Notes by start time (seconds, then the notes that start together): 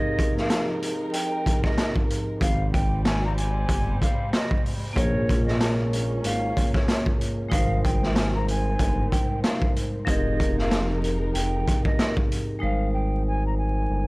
Already playing: F3 G#3 C4 D#4 G4 G#4 A#4 D#5
0.19 kick, closed hi-hat
0.37 F5, snare
0.50 snare, closed hi-hat
0.82 closed hi-hat
1.12 G5, closed hi-hat
1.46 kick, closed hi-hat
1.64 D#5, kick, snare
1.78 snare, closed hi-hat
1.96 kick
2.10 closed hi-hat
2.40 G#1 G3 G#3 C4 F5, kick, closed hi-hat
2.72 G5, kick, closed hi-hat
3.05 G#5, snare, closed hi-hat
3.25 A#5
3.36 G#5, closed hi-hat
3.69 G1, kick, closed hi-hat
4.01 F5, kick, closed hi-hat
4.33 D#5, snare, closed hi-hat
4.51 kick
4.66 open hi-hat
4.93 A#1 A#3 F4 G#4 C#5, kick
4.97 A#3 C#4 A#4 C#5, closed hi-hat
5.29 kick, closed hi-hat
5.46 D#5, snare
5.61 snare, closed hi-hat
5.93 closed hi-hat
6.24 G#1 F5, closed hi-hat
6.57 kick, closed hi-hat
6.74 C#5, kick, snare
6.88 snare, closed hi-hat
7.06 kick
7.21 closed hi-hat
7.48 G#1 D#3 G3 G#3 C4 D#4 F5, kick
7.52 A#4 C5, closed hi-hat
7.83 G5, kick, closed hi-hat
8.03 snare
8.15 G#5, snare, closed hi-hat
8.34 A#5
8.48 G#5, closed hi-hat
8.79 G1, kick, closed hi-hat
9.10 G5, kick, closed hi-hat
9.43 F5, snare, closed hi-hat
9.62 kick
9.76 closed hi-hat
10.05 F1 F3 G#3 C4 D#4 G4 A#4 D#5, kick, closed hi-hat
10.09 G#4 A#4
10.40 kick, closed hi-hat
10.59 F5, snare
10.71 snare, closed hi-hat
11.04 closed hi-hat
11.34 F1 G5, closed hi-hat
11.68 kick, closed hi-hat
11.85 D#5, kick
11.99 snare, closed hi-hat
12.17 kick
12.32 closed hi-hat
12.59 G#1 G3 G#3 D#4 F5
12.63 A#4 C5
12.93 G5
13.27 G#5
13.46 A#5
13.57 G#5
13.90 G1